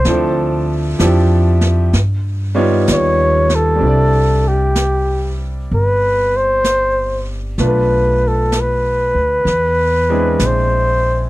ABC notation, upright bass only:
X:1
M:4/4
L:1/8
Q:"Swing" 1/4=64
K:C
V:1 name="Upright bass" clef=bass
D,,2 F,,2 G,,2 ^D,,2 | C,,4 G,,,4 | B,,,3 D,, E,,2 _B,,,2 |]